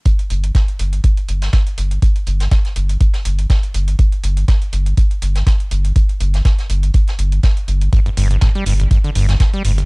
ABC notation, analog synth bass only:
X:1
M:4/4
L:1/8
Q:"Swing 16ths" 1/4=122
K:Cdor
V:1 name="Analog synth bass" clef=bass
z G,,, z G,,, z G,,, z G,,, | z G,,, z G,,, z G,,, z G,,, | z G,,, z G,,, z G,,, z G,,, | z G,,, z G,,, z G,,, z G,,, |
z G,,, z G,,, z G,,, z G,,, |]